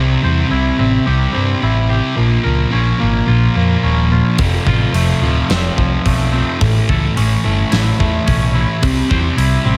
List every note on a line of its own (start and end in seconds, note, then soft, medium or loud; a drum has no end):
0.00 0.15 C2 medium
0.00 0.21 C3 medium
0.00 1.35 C3 medium
0.00 0.22 G3 loud
0.00 0.23 C4 loud
0.22 0.42 E2 medium
0.22 0.49 C3 medium
0.22 0.50 G3 medium
0.22 0.50 C4 medium
0.22 1.63 C5 medium
0.50 0.70 C2 medium
0.50 0.77 C3 medium
0.50 0.78 G3 medium
0.50 0.78 C4 medium
0.50 1.62 E4 medium
0.78 0.98 A1 medium
0.78 1.04 C3 medium
0.78 1.05 G3 medium
0.78 1.33 C4 medium
0.78 1.06 C4 medium
1.06 1.26 C2 medium
1.06 1.32 C3 medium
1.06 1.33 G3 medium
1.06 1.33 C4 medium
1.06 1.89 G4 medium
1.33 1.54 G2 medium
1.33 1.60 C3 medium
1.33 1.60 G3 medium
1.33 2.18 C4 medium
1.33 1.61 C4 medium
1.61 1.99 A1 medium
1.61 1.87 C3 medium
1.61 1.88 G3 medium
1.61 1.89 C4 medium
1.61 2.18 E4 medium
1.89 2.15 C3 medium
1.89 2.16 G3 medium
1.89 2.16 C4 medium
1.89 2.18 G4 medium
2.16 2.36 A#1 medium
2.16 2.42 A#2 medium
2.16 3.56 A#2 medium
2.16 2.43 F3 medium
2.16 2.44 A#3 medium
2.43 2.64 C#2 medium
2.43 2.70 A#2 medium
2.43 2.71 F3 medium
2.43 2.71 A#3 medium
2.43 3.83 A#4 medium
2.71 2.91 A#1 medium
2.71 2.98 A#2 medium
2.71 2.99 F3 medium
2.71 2.99 A#3 medium
2.71 3.83 C#4 medium
2.99 3.20 G#1 medium
2.99 3.25 A#2 medium
2.99 3.25 F3 medium
2.99 3.26 A#3 medium
2.99 3.56 A#3 medium
3.27 3.47 A#1 medium
3.27 3.53 A#2 medium
3.27 3.54 F3 medium
3.27 3.55 A#3 medium
3.27 4.11 F4 medium
3.55 3.74 F2 medium
3.55 3.82 A#2 medium
3.55 3.83 F3 medium
3.55 3.83 A#3 loud
3.55 4.40 A#3 medium
3.83 4.20 D#1 medium
3.83 4.10 A#2 medium
3.83 4.11 F3 medium
3.83 4.11 A#3 medium
3.83 4.39 C#4 medium
4.11 4.38 A#2 medium
4.11 4.38 F3 medium
4.11 4.38 A#3 medium
4.11 4.40 F4 medium
4.38 4.57 F1 medium
4.38 4.65 F2 medium
4.38 5.78 F2 medium
4.38 4.66 C3 medium
4.38 4.66 F3 loud
4.38 kick loud
4.38 open hi-hat soft
4.66 4.85 A1 medium
4.66 4.94 F2 medium
4.66 4.94 C3 medium
4.66 4.95 F3 medium
4.66 6.06 F4 medium
4.66 kick medium
4.93 5.12 F1 medium
4.93 5.21 F2 medium
4.93 5.21 C3 loud
4.93 5.22 F3 loud
4.93 6.04 A3 medium
4.93 open hi-hat soft
5.21 5.40 D1 medium
5.21 5.49 F2 medium
5.21 5.50 C3 medium
5.21 5.76 F3 medium
5.21 5.50 F3 medium
5.50 5.68 F1 medium
5.50 5.77 F2 medium
5.50 5.77 C3 medium
5.50 5.77 F3 medium
5.50 6.31 C4 medium
5.50 snare loud
5.50 open hi-hat soft
5.77 5.96 C2 medium
5.77 6.04 F2 medium
5.77 6.05 C3 medium
5.77 6.61 F3 medium
5.77 6.05 F3 medium
5.77 kick medium
6.06 6.42 B1 medium
6.06 6.32 F2 medium
6.06 6.32 C3 medium
6.06 6.33 F3 medium
6.06 6.61 A3 medium
6.06 kick medium
6.06 open hi-hat soft
6.32 6.59 F2 medium
6.32 6.59 C3 medium
6.32 6.60 F3 medium
6.32 6.60 C4 medium
6.60 6.79 A1 medium
6.60 7.99 A2 medium
6.60 6.88 A2 medium
6.60 6.90 E3 medium
6.60 6.89 A3 medium
6.60 kick loud
6.60 open hi-hat soft
6.89 7.07 C#2 medium
6.89 7.16 A2 medium
6.89 7.17 E3 medium
6.89 7.17 A3 medium
6.89 8.27 A4 medium
6.89 kick medium
7.17 7.35 A1 medium
7.17 7.43 A2 medium
7.17 7.44 E3 medium
7.17 7.44 A3 medium
7.17 8.25 C#4 medium
7.17 open hi-hat medium
7.44 7.63 G1 medium
7.44 7.70 A2 medium
7.44 7.71 E3 medium
7.44 7.71 A3 medium
7.44 7.98 A3 medium
7.72 7.90 A1 loud
7.72 7.98 A2 medium
7.72 7.98 E3 medium
7.72 7.99 A3 medium
7.72 8.53 E4 medium
7.72 snare medium
7.72 open hi-hat soft
7.99 8.18 E2 medium
7.99 8.27 A2 medium
7.99 8.27 E3 medium
7.99 8.82 A3 medium
7.99 8.28 A3 loud
7.99 kick medium
8.26 8.64 B1 medium
8.26 8.54 A2 medium
8.26 8.55 E3 medium
8.26 8.55 A3 medium
8.26 8.82 C#4 medium
8.26 kick medium
8.26 open hi-hat medium
8.54 8.81 A2 medium
8.54 8.81 E3 medium
8.54 8.82 A3 medium
8.54 8.82 E4 medium
8.82 9.01 C2 medium
8.82 9.09 C3 loud
8.82 9.77 C3 medium
8.82 9.10 G3 medium
8.82 9.10 C4 loud
8.82 kick loud
8.82 open hi-hat medium
9.10 9.29 E2 medium
9.10 9.36 C3 medium
9.10 9.37 G3 medium
9.10 9.36 C4 medium
9.10 9.77 C5 medium
9.10 kick medium
9.37 9.56 C2 medium
9.37 9.64 C3 medium
9.37 9.64 G3 loud
9.37 9.65 C4 medium
9.37 9.77 E4 medium
9.37 open hi-hat soft
9.65 9.77 A1 medium
9.65 9.77 C3 medium
9.65 9.77 G3 medium
9.65 9.77 C4 medium